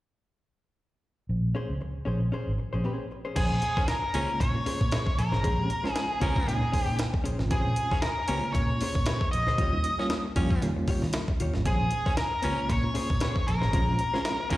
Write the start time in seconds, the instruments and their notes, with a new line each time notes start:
1.29 fingered electric bass A#1
1.55 hollow-body jazz guitar C#4 G#4 C5
1.70 fingered electric bass C#2
1.81 muted hollow-body jazz guitar stroke
2.05 fingered electric bass A#1, hollow-body jazz guitar C#4 G#4 C5
2.20 muted hollow-body jazz guitar stroke
2.32 hollow-body jazz guitar C#4 G#4 C5, muted fingered electric bass stroke
2.47 fingered electric bass G#1
2.58 muted hollow-body jazz guitar stroke
2.73 fingered electric bass A#1, hollow-body jazz guitar C#4 G#4 C5
2.84 hollow-body jazz guitar C#4 G#4 C5
3.11 muted hollow-body jazz guitar stroke
3.25 hollow-body jazz guitar C#4 G#4 C5
3.36 fingered electric bass A#1, hollow-body jazz guitar C#4 G#4 C5, lead electric guitar G#4, kick, closed hi-hat, crash
3.62 muted hollow-body jazz guitar stroke, closed hi-hat
3.77 baritone saxophone C#4, hollow-body jazz guitar C#4 G#4 C5, muted fingered electric bass stroke, kick, snare
3.88 lead electric guitar A#4, muted hollow-body jazz guitar stroke, snare, closed hi-hat
4.02 muted hollow-body jazz guitar stroke
4.14 fingered electric bass C#2, reed electric piano G#3 A#3 C#4 F4, hollow-body jazz guitar C#4 G#4 C5, baritone saxophone C#4, closed hi-hat
4.29 muted hollow-body jazz guitar stroke
4.40 fingered electric bass A#2, lead electric guitar C#5, kick, snare, closed hi-hat
4.55 muted hollow-body jazz guitar stroke
4.66 hollow-body jazz guitar C#4 G#4 C5, muted fingered electric bass stroke, open hi-hat
4.81 fingered electric bass A#2, muted hollow-body jazz guitar stroke, kick
4.92 hollow-body jazz guitar C#4 G#4 C5, snare, closed hi-hat
5.07 kick
5.18 fingered electric bass A#1, lead electric guitar A#4, muted hollow-body jazz guitar stroke, closed hi-hat
5.32 fingered electric bass G#1, hollow-body jazz guitar C#4 G#4 C5, snare
5.43 fingered electric bass A#1, reed electric piano G#3 C4 C#4 G#4, hollow-body jazz guitar C#4 G#4 C5, kick, closed hi-hat
5.58 reed electric piano G#3 C4 C#4 G4
5.69 muted hollow-body jazz guitar stroke, closed hi-hat
5.83 reed electric piano G#3 C4 C#4 F4, baritone saxophone C#4, hollow-body jazz guitar C#4 G#4 C5, muted fingered electric bass stroke, snare
5.93 lead electric guitar G#4, muted hollow-body jazz guitar stroke, snare, closed hi-hat
6.09 muted hollow-body jazz guitar stroke
6.20 fingered electric bass C#2, reed electric piano G#3 C4 C#4 F4, hollow-body jazz guitar C#4 G#4 C5, baritone saxophone C#4, lead electric guitar A#4, kick, closed hi-hat
6.35 muted hollow-body jazz guitar stroke, kick
6.47 fingered electric bass A#2, reed electric piano G#3 C4 C#4 D#4, lead electric guitar G#4, snare, closed hi-hat
6.61 muted hollow-body jazz guitar stroke
6.72 hollow-body jazz guitar C#4 G#4 C5, muted fingered electric bass stroke, kick, open hi-hat
6.83 lead electric guitar G4
6.87 fingered electric bass A#2, muted hollow-body jazz guitar stroke
6.98 muted hollow-body jazz guitar stroke, snare, closed hi-hat
7.13 muted hollow-body jazz guitar stroke, kick
7.24 fingered electric bass A#1, hollow-body jazz guitar C#4 G#4 C5, closed hi-hat
7.39 fingered electric bass G#1, reed electric piano G#3 C4 C#4 F4, muted hollow-body jazz guitar stroke, snare
7.51 fingered electric bass A#1, hollow-body jazz guitar C#4 G#4 C5, lead electric guitar G#4, kick, closed hi-hat
7.76 muted hollow-body jazz guitar stroke, closed hi-hat
7.91 baritone saxophone C#4, hollow-body jazz guitar C#4 G#4 C5, muted fingered electric bass stroke, kick, snare
8.02 lead electric guitar A#4, muted hollow-body jazz guitar stroke, snare, closed hi-hat
8.19 muted hollow-body jazz guitar stroke
8.28 fingered electric bass C#2, reed electric piano G#3 A#3 C#4 F4, baritone saxophone C#4, hollow-body jazz guitar C#4 G#4 C5, closed hi-hat
8.45 muted hollow-body jazz guitar stroke
8.53 fingered electric bass A#2, lead electric guitar C#5, kick, snare, closed hi-hat
8.70 muted hollow-body jazz guitar stroke
8.81 hollow-body jazz guitar C#4 G#4 C5, muted fingered electric bass stroke, open hi-hat
8.95 fingered electric bass A#2, muted hollow-body jazz guitar stroke, kick
9.06 hollow-body jazz guitar C#4 G#4 C5, snare, closed hi-hat
9.21 kick
9.31 fingered electric bass A#1, lead electric guitar D#5, muted hollow-body jazz guitar stroke, closed hi-hat
9.47 fingered electric bass C#2, hollow-body jazz guitar C#4 G#4 C5, snare
9.58 fingered electric bass D#2, reed electric piano G3 A#3 C#4 F4, hollow-body jazz guitar F4 G4 C#5, kick, closed hi-hat
9.72 reed electric piano G3 A#3 C#4 D#4
9.84 muted hollow-body jazz guitar stroke, closed hi-hat
9.98 reed electric piano G3 A#3 C#4 F4, baritone saxophone C#4, hollow-body jazz guitar F4 G4 C#5, muted fingered electric bass stroke, snare
10.10 muted hollow-body jazz guitar stroke, snare, closed hi-hat
10.26 muted hollow-body jazz guitar stroke
10.36 fingered electric bass F2, reed electric piano G3 A#3 C#4 F4, baritone saxophone C#4, hollow-body jazz guitar F4 G4 C#5, kick, closed hi-hat
10.51 muted hollow-body jazz guitar stroke, kick
10.61 fingered electric bass D#3, reed electric piano G3 A#3 C#4 F4, snare, closed hi-hat
10.76 muted hollow-body jazz guitar stroke
10.88 hollow-body jazz guitar F4 G4 C#5, muted fingered electric bass stroke, kick, open hi-hat
11.02 fingered electric bass D#3, muted hollow-body jazz guitar stroke, snare
11.13 muted hollow-body jazz guitar stroke, snare, closed hi-hat
11.28 muted hollow-body jazz guitar stroke, kick
11.40 fingered electric bass D#2, hollow-body jazz guitar F4 G4 C#5, closed hi-hat
11.54 fingered electric bass G#1, reed electric piano G3 A#3 C#4 F4, muted hollow-body jazz guitar stroke, snare
11.66 fingered electric bass A#1, hollow-body jazz guitar C#4 G#4 C5, lead electric guitar G#4, kick, closed hi-hat
11.91 muted hollow-body jazz guitar stroke, closed hi-hat
12.06 baritone saxophone C#4, hollow-body jazz guitar C#4 G#4 C5, muted fingered electric bass stroke, kick, snare
12.17 lead electric guitar A#4, muted hollow-body jazz guitar stroke, snare, closed hi-hat
12.32 muted hollow-body jazz guitar stroke
12.42 fingered electric bass C#2, reed electric piano G#3 A#3 C#4 F4, hollow-body jazz guitar C#4 G#4 C5, baritone saxophone C#4, closed hi-hat
12.57 muted hollow-body jazz guitar stroke
12.69 fingered electric bass A#2, lead electric guitar C#5, kick, snare, closed hi-hat
12.83 muted hollow-body jazz guitar stroke
12.94 hollow-body jazz guitar C#4 G#4 C5, muted fingered electric bass stroke, open hi-hat
13.10 fingered electric bass A#2, muted hollow-body jazz guitar stroke, kick
13.20 hollow-body jazz guitar C#4 G#4 C5, snare, closed hi-hat
13.36 kick
13.47 fingered electric bass A#1, lead electric guitar A#4, muted hollow-body jazz guitar stroke, closed hi-hat
13.61 fingered electric bass G#1, hollow-body jazz guitar C#4 G#4 C5, snare
13.72 fingered electric bass A#1, reed electric piano G#3 C4 C#4 F4, hollow-body jazz guitar C#4 G#4 C5, kick, closed hi-hat
13.88 reed electric piano G#3 C4 C#4 F4
13.99 muted hollow-body jazz guitar stroke, closed hi-hat
14.14 reed electric piano G#3 C4 C#4 F4, baritone saxophone C#4, hollow-body jazz guitar C#4 G#4 C5, muted fingered electric bass stroke, snare
14.24 muted hollow-body jazz guitar stroke, snare, closed hi-hat
14.40 muted hollow-body jazz guitar stroke
14.50 fingered electric bass C#2, reed electric piano G#3 C4 C#4 F4, hollow-body jazz guitar C#4 G#4 C5, baritone saxophone C#4, lead electric guitar A#4, kick, closed hi-hat